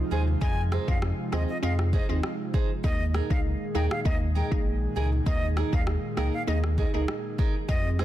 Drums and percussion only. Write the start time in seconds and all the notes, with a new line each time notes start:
0.42 kick
0.72 cross-stick
0.88 kick
1.02 cross-stick
1.33 cross-stick
1.79 cross-stick
1.93 kick
2.23 cross-stick
2.54 kick
2.84 kick
3.15 cross-stick
3.31 kick
3.91 cross-stick
4.06 kick
4.52 kick
5.27 kick
5.57 cross-stick
5.73 kick
5.87 cross-stick
6.17 cross-stick
6.64 cross-stick
6.78 kick
7.08 cross-stick
7.39 kick
7.69 kick
7.99 cross-stick